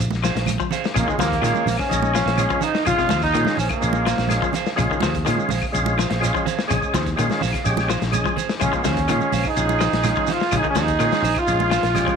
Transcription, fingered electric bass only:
0.00 0.30 A#1 medium
0.35 0.55 A#1 medium
0.96 1.06 A#1 loud
1.18 1.39 D#2 medium
1.41 1.52 A#2 medium
1.66 1.76 A#1 medium
1.92 2.22 A#1 medium
2.26 2.46 A#1 medium
2.87 2.97 A#1 medium
3.11 3.31 D#2 medium
3.34 3.45 A#2 medium
3.58 3.68 A#1 medium
3.83 4.13 A#1 medium
4.19 4.39 A#1 medium
4.79 4.89 A#1 loud
5.03 5.23 D#2 medium
5.28 5.37 A#2 medium
5.51 5.61 A#1 medium
5.75 6.05 A#1 medium
6.11 6.31 A#1 medium
6.71 6.80 A#1 loud
6.94 7.14 D#2 loud
7.18 7.28 A#2 medium
7.43 7.53 A#1 medium
7.66 7.96 A#1 medium
8.02 8.22 A#1 medium
8.61 8.71 A#1 loud
8.73 muted fingered electric bass stroke soft
8.86 9.06 D#2 medium
9.09 9.19 A#2 medium
9.34 9.43 A#1 medium
9.57 9.87 A#1 medium
9.93 10.13 A#1 medium
10.53 10.62 A#1 medium
10.75 10.96 D#2 medium
10.99 11.09 A#2 medium
11.22 11.33 A#1 medium
11.48 11.78 A#1 medium
11.83 12.04 A#1 medium

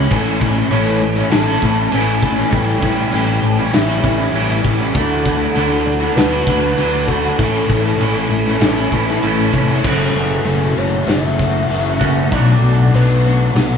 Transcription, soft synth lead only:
0.71 1.28 C#5 loud
1.30 1.93 A5 loud
1.91 2.55 G#5 loud
2.54 3.73 G5 loud
3.74 4.61 E5 medium
4.97 6.17 A4 loud
6.15 7.09 B4 loud
7.07 9.23 A4 loud
9.84 10.79 A4 medium
10.78 11.09 C#5 loud
11.08 12.35 E5 loud
12.33 12.96 D5 loud
12.95 13.56 B4 medium

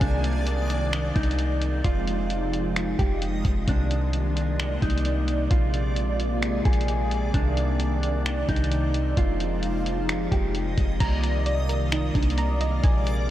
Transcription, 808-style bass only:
0.01 1.12 C2 loud
1.16 1.82 C2 loud
1.84 2.95 F1 loud
2.99 3.43 F1 loud
3.45 3.67 F1 loud
3.68 4.78 C2 loud
4.82 5.48 C2 loud
5.51 6.61 A#1 loud
6.65 7.31 A#1 loud
7.34 8.45 C2 loud
8.49 9.15 C2 loud
9.17 10.28 F1 loud
10.32 10.76 F1 loud
10.78 11.00 F1 loud
11.01 12.11 C2 loud
12.15 12.81 C2 loud
12.84 13.30 A#1 loud

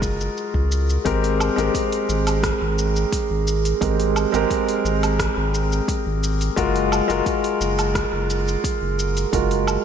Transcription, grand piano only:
0.00 1.05 G#3 medium
0.00 1.08 F4 medium
0.00 1.07 F#4 medium
0.00 1.06 A#4 medium
1.05 1.53 G#3 medium
1.05 1.54 C4 medium
1.05 1.54 G4 medium
1.05 1.54 A#4 medium
1.56 3.77 G#3 medium
1.56 3.77 C4 medium
1.56 3.78 G4 medium
1.56 3.78 A#4 medium
3.81 4.29 G#3 medium
3.81 4.30 C4 medium
3.81 4.30 G4 medium
3.81 4.30 A#4 medium
4.32 6.53 G#3 medium
4.32 6.53 C4 medium
4.32 6.54 G4 medium
4.32 6.54 A#4 medium
6.56 7.05 G#3 medium
6.56 7.05 F4 medium
6.56 7.06 F#4 medium
6.56 7.06 A#4 loud
7.08 9.28 G#3 medium
7.08 9.29 F4 medium
7.08 9.29 F#4 medium
7.08 9.30 A#4 medium
9.33 9.81 G#3 medium
9.33 9.81 F4 medium
9.33 9.82 F#4 medium
9.33 9.82 A#4 medium

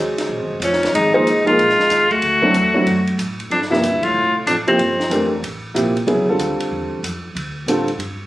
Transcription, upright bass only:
0.00 0.28 C#2 medium
0.29 0.39 A#1 medium
0.39 0.49 G#1 medium
0.50 0.59 D#1 medium
0.60 0.92 F1 medium
0.93 1.24 G#1 medium
1.24 1.56 C2 medium
1.57 1.77 A#1 medium
1.90 2.21 D#2 medium
2.22 2.53 D2 medium
2.54 2.85 E2 medium
2.86 3.17 F#2 medium
3.18 3.49 A2 medium
3.50 3.81 G2 medium
3.82 4.13 D2 medium
4.14 4.45 C2 medium
4.46 4.65 A1 medium
4.67 muted upright bass stroke soft
4.78 5.09 G1 medium
5.10 5.41 F1 medium
5.43 5.74 A1 medium
5.75 6.06 A#1 medium
6.07 6.19 C2 medium
6.17 6.28 G1 medium
6.29 6.39 F1 medium
6.39 6.58 D2 medium
6.59 muted upright bass stroke soft
6.71 7.02 E2 medium
7.03 7.34 F2 medium
7.35 7.66 D2 medium
7.66 7.97 A2 medium
7.98 8.27 G2 medium

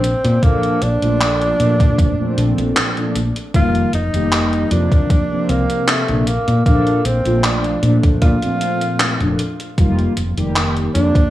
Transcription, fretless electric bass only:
0.00 0.13 A#1 medium
0.25 0.38 A#2 loud
0.82 0.97 A#1 medium
1.02 1.52 A#1 medium
1.60 2.00 A#2 medium
1.98 2.14 F1 medium
2.38 2.53 A#1 loud
2.58 2.72 A#1 medium
3.15 3.31 A#1 medium
3.54 3.84 F1 medium
3.93 4.08 F1 medium
4.14 4.63 F1 medium
4.71 4.86 F2 medium
5.49 5.64 C2 medium
6.09 6.37 A#1 medium
6.48 6.61 A#2 loud
7.05 7.20 A#1 medium
7.25 7.75 A#1 medium
7.83 7.98 A#2 medium
8.22 8.37 A#2 medium
9.20 9.34 F1 medium
9.78 10.07 F1 medium
10.17 10.32 F1 medium
10.37 10.87 F1 medium
10.95 11.10 F2 medium

